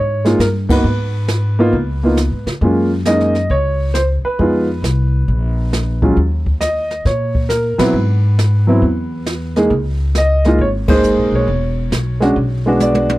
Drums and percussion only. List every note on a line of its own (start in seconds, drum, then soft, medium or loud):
0.25 snare soft
0.40 snare medium
0.40 hi-hat pedal medium
0.69 kick medium
0.69 ride medium
0.85 brush sweep soft
1.28 snare medium
1.28 hi-hat pedal medium
1.73 brush sweep soft
1.73 kick soft
2.17 snare soft
2.17 hi-hat pedal medium
2.47 snare soft
2.61 brush sweep soft
2.61 kick soft
3.05 snare medium
3.05 hi-hat pedal medium
3.20 snare soft
3.35 snare soft
3.50 brush sweep soft
3.50 kick soft
3.95 snare medium
3.95 hi-hat pedal medium
4.39 brush sweep soft
4.39 kick soft
4.84 snare medium
4.84 hi-hat pedal medium
5.28 brush sweep soft
5.28 kick soft
5.73 snare medium
5.73 hi-hat pedal medium
6.02 kick medium
6.17 brush sweep soft
6.17 kick soft
6.46 kick soft
6.61 snare medium
6.61 hi-hat pedal medium
6.91 snare soft
7.05 brush sweep soft
7.05 kick soft
7.05 snare soft
7.35 kick soft
7.50 snare medium
7.50 hi-hat pedal medium
7.79 snare medium
7.79 ride medium
7.95 brush sweep soft
8.39 snare medium
8.39 hi-hat pedal medium
8.82 brush sweep soft
8.82 kick soft
9.26 snare medium
9.26 hi-hat pedal soft
9.56 snare soft
9.71 brush sweep soft
9.71 kick soft
10.15 snare medium
10.15 hi-hat pedal medium
10.45 snare soft
10.59 brush sweep soft
10.59 kick soft
10.88 kick medium
10.88 ride medium
11.03 hi-hat pedal medium
11.48 brush sweep soft
11.48 kick soft
11.92 snare medium
11.92 hi-hat pedal medium
12.22 snare soft
12.36 brush sweep soft
12.36 kick soft
12.80 hi-hat pedal medium
12.80 high tom soft
12.95 high tom medium
13.09 high tom medium